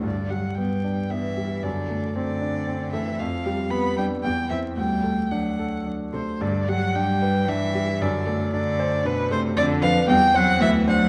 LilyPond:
<<
  \new Staff \with { instrumentName = "Violin" } { \time 3/4 \key g \major \tempo 4 = 114 d''8 fis''8 g''4 e''4 | d''4 d''4. e''8 | f''4 b''8 g''8 g''8 e''8 | g''4 fis''4 r8 c''8 |
d''8 fis''8 g''4 e''4 | d''4 d''4 b'8 c''8 | d''8 f''8 g''8 fis''8 e''8 fis''8 | }
  \new Staff \with { instrumentName = "Grand piano" } { \time 3/4 \key g \major g,8 g8 b8 d'8 b8 g8 | fis,8 a8 c'8 d'8 c'8 a8 | f,8 g8 b8 d'8 e,8 <c' e'>8 | d,8 a8 d'8 a'8 d'8 a8 |
g,8 g8 d'8 b'8 d'8 g8 | fis,8 a8 d'8 c''8 d'8 a8 | f,8 <d' b'>8 e,8 <c' c''>8 d,8 <d' c''>8 | }
  \new Staff \with { instrumentName = "Cello" } { \clef bass \time 3/4 \key g \major d8 fis8 g4 e4 | d4 d4. e8 | f4 b8 g8 g8 e8 | g4 fis4 r8 c8 |
d8 fis8 g4 e4 | d4 d4 b,8 c8 | d8 f8 g8 fis8 e8 fis8 | }
>>